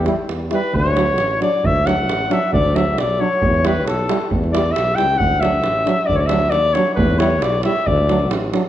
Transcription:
0.05 G3 E4, davul high
0.29 E2, davul high
0.50 G3 E4 B4, davul high
0.64 davul high
0.74 D2 C#5, davul low
0.86 davul high
0.96 F#3 D4, davul high
1.07 davul high
1.18 A1, davul high
1.31 davul high
1.40 F#3 D4 D5, davul high
1.54 davul high
1.63 D2 E5, davul low
1.76 davul high
1.86 F#3 D4 F#5, davul high
2.08 A1, davul high
2.29 F#3 D4 E5, davul high
2.43 davul high
2.53 D2 D5, davul low
2.65 davul high
2.74 F#3 D4 E5, davul high
2.98 B1 D5, davul high
3.19 F#3 D4 C#5
3.33 davul high
3.42 E2, davul low
3.54 davul high
3.64 G3 E4 B4, davul high
3.86 B1 A4, davul high
4.08 G3 E4, davul high
4.22 davul high
4.31 E2, davul low
4.44 davul high
4.52 G3 E4 D5, davul high
4.72 E5
4.76 B1, davul high
4.88 davul high
4.95 C#2 G3 E4 G5, davul high
5.10 davul high
5.18 D2 F#5, davul low
5.32 davul high
5.40 F#3 D4 E5, davul high
5.64 A1, davul high
5.84 F#3 D4, davul high
5.99 davul high
6.06 D2 D5, davul low
6.15 C#5 D5
6.20 davul high
6.26 D4 E5, davul high
6.30 F#3
6.50 D#2 D5, davul high
6.74 F#3 D4 C#5, davul high
6.87 davul high
6.95 E2 B4, davul low
7.11 davul high
7.19 G3 E4 C#5, davul high
7.42 B1 D5, davul high
7.63 G3 E4 E5, davul high
7.76 davul high
7.87 D2 D5, davul low
8.09 F#3 D4, davul high
8.30 A1, davul high
8.44 davul high
8.53 F#3 D4, davul high

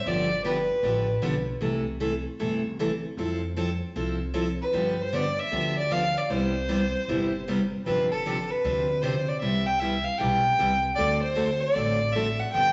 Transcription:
0.06 G1 D3 F3 B3 D4 G4 D5
0.44 D3 F3 B3 D4 G4 B4
0.83 A1 D3 F3 B3 D4 G4
1.22 B1 D3 F3 B3 D4 G4
1.61 C2 C3 E3 A3 E4 A4
2.00 C3 E3 A3 E4 A4
2.39 G1 C3 E3 A3 E4 A4
2.79 C3 E3 A3 E4 A4
3.17 F2 F3 C4 E4 A4
3.57 F3 C4 E4 A4
3.96 C2 F3 C4 E4 A4
4.34 F3 C4 E4 A4
4.62 B4
4.73 G2 D3 F3 B3 D4 G4
5.02 C5
5.13 D3 F3 B3 D4 G4 D5
5.39 E5
5.51 D2 D3 F3 B3 D4 G4
5.78 D5
5.91 D3 F3 B3 D4 G4 F5
6.18 D5
6.30 C2 C3 G3 B3 E4 G4 C5
6.68 C3 G3 B3 E4 G4
7.08 G1 C3 G3 B3 E4 G4
7.48 C3 G3 B3 E4 G4
7.86 G1 C3 F3 C4 D4 G4 B4
8.11 A4
8.26 C3 F3 C4 D4 G4
8.51 B4
8.64 D2 C3 F3 C4 D4 G4
9.02 C3 F3 C4 D4 G4 C5
9.29 D5
9.41 C2 C3 G3 B3 E4 G4 E5
9.66 G5
9.80 C3 G3 B3 E4 G4 E5
10.04 F5
10.19 B1 C3 G3 B3 E4 G4 G5
10.59 C2 C3 G3 B3 E4 G4
10.96 D2 D3 A3 C4 F#4 A4 D5
11.22 C5
11.35 D3 A3 C4 F#4 A4
11.60 D5
11.75 A1 D3 A3 C4 F#4 A4
12.13 D3 A3 C4 F#4 A4 E5
12.40 F#5
12.53 G1 D3 F3 B3 D4 G4 G5

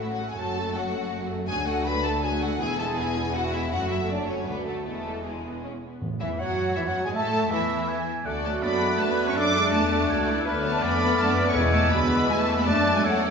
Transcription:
Already playing: A1 A2 A3 C#4
0.02 F#3 E4 F#4 E5
0.11 F#4 F#5
0.19 A3 A4
0.29 G#4 G#5
0.37 F#1 F#2 F#3 A3 C#4 F#4 A4 A5
0.57 A3 A4
0.74 F#3 A3 C#4 F#4 F#5
0.93 A3 A4
1.10 F#3 F#4
1.29 A3 A4
1.47 D2 F#3 A3 D4 F#4 G#4 G#5
1.66 A3 F#4 A4 F#5
1.84 F#3 F#4 B4 B5
2.03 A3 A4 A5
2.21 F#3 F#4 G#4 G#5
2.41 A3 F#4 A4 F#5
2.59 E1 E2 B3 E4 G#4 G#5
2.78 G#3 G#4 A4 A5
2.96 B3 E4 G#4 G#5
3.16 G#3 G#4
3.33 B3 E4 F#4 F#5
3.52 G#3 E4 G#4 E5
3.71 F#1 F#2 F#3 A3 C#4 F#4 F#5
3.90 A3 E4 F#4 E5
4.09 F#3 C#4 D4 D5
4.27 A3 C#4 F#4 C#5
4.46 D2 A3 B3 D4 F#4 B4
4.65 F#3 A3 F#4 A4
4.84 E1 E2 G#3 A3 B3 E4 A4
5.06 E3 G#3
5.24 G#3 B3 E4 G#4
5.44 B3
5.64 C#4
5.83 B3
6.01 A2
6.20 E2 E3 E4 E5
6.38 F#2 F#3 F#4 C#5 F#5
6.75 E2 E3 E4 E5
6.86 F#2 F#3 F#4 F#5
7.04 G#2 G#3 G#4 G#5
7.13 A2 A3 A4 E5 A5
7.51 E2 E3 E4 E5
7.88 G#5
8.25 D2 A3 F#4 A4 D5 F#5 F#6
8.44 F#3 A3 A5
8.62 F#2 F#3 B3 D4 A4 D5 B5
8.82 G#3
8.99 E2 A3 D4 B4 E5 A5
9.08 B3 B5
9.26 C#4 C#6
9.35 F#2 F#3 D4 A4 D5 D6
9.54 G#3
9.72 E2 A3 G#4 D5 A5
9.91 F#4
10.08 C#2 A3 F#4 A4 C#5
10.28 E4
10.45 D2 A3 B3 D4 A4 B4 F6
10.63 A3 C#5 A5
10.80 F2 B3 G#4 D5 B5
10.98 A4
11.16 F#2 A3 D4 A4 A5
11.27 B3 B5
11.46 C#4 C#6
11.54 E2 G#3 B3 E4 G#4 C#5 E6
11.74 G#3 A3 A5
11.91 D2 F#3 B3 B4 B5
12.11 E3
12.28 E2 G#3 B4 E5 G#5
12.39 A3 A5
12.58 B3 B5
12.65 F#2 F#3 A3 D4 A4 D5 A5 F#6
12.95 G#3 G#5
13.04 E2 F#3 A3 C#4 A4 C#5 F#5 E6

